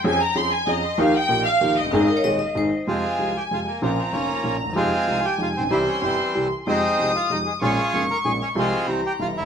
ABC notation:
X:1
M:3/4
L:1/16
Q:1/4=190
K:Ab
V:1 name="Violin section"
a2 b2 c'2 a2 e4 | f2 g4 f4 e2- | e8 z4 | [K:Fm] a12 |
b12 | a12 | c'8- c'2 z2 | e'12 |
d'12 | c'4 b8 |]
V:2 name="Vibraphone"
z12 | z12 | z2 B d e2 e2 c4 | [K:Fm] z12 |
z12 | z12 | z12 | z12 |
z12 | z12 |]
V:3 name="Bandoneon"
z12 | z12 | z12 | [K:Fm] F6 G2 F2 B,2 |
C2 C2 D6 z2 | F6 G2 F2 C2 | =E2 D2 C6 z2 | E6 F2 E2 A,2 |
A6 B2 A2 D2 | F4 z2 G2 F2 =E2 |]
V:4 name="Bandoneon" clef=bass
z12 | z12 | z12 | [K:Fm] [A,C]6 z6 |
F,4 [F,B,]6 z2 | [A,C]6 z6 | [G,C]4 [=E,G,]6 z2 | [A,C]6 z6 |
[DF]6 z6 | [A,C]6 z6 |]
V:5 name="Grand piano" clef=bass
[F,,F,CDA]2 z2 [F,,F,CDA]2 z2 [F,,F,CDA]2 z2 | [E,,E,F,B,EG]2 z2 [B,,,B,,F,B,EG]2 z2 [E,,E,F,B,EG]2 z/2 F,,,/2 _G,,,/2 =G,,,/2 | [A,,,A,,E,A,CA]2 z2 [E,,,E,,E,A,CA]2 z2 [A,,,A,,E,A,CA]2 z2 | [K:Fm] [F,,C,F,A,F]2 z2 [C,,C,F,A,F]2 z2 [F,,C,F,A,F]2 z2 |
[B,,,B,,D,F,B,F]2 z2 [F,,,F,,D,F,B,F]2 z2 [B,,,B,,D,F,B,F]2 z/2 =D,,/2 E,,/2 =E,,/2 | [F,,C,F,A,E]2 z2 [C,,C,F,A,E]2 z2 [F,,C,F,A,E]2 z/2 =A,,,/2 B,,,/2 =B,,,/2 | [C,,C,=E,G,=E]2 z2 [G,,,G,,C,E,G,E]2 z2 [C,,C,E,G,E]2 z2 | [F,,C,F,A,E]2 z2 [C,,C,F,A,E]2 z2 [F,,C,F,A,E]2 z2 |
[B,,,B,,D,A,B,F]2 z2 [F,,,F,,D,A,B,F]2 z2 [B,,,B,,D,A,B,F]2 z2 | [C,,C,F,A,F]2 z2 [C,,C,=E,G,=E]2 z2 [G,,,G,,C,E,G,E]2 z/2 =D,,/2 _E,,/2 z/2 |]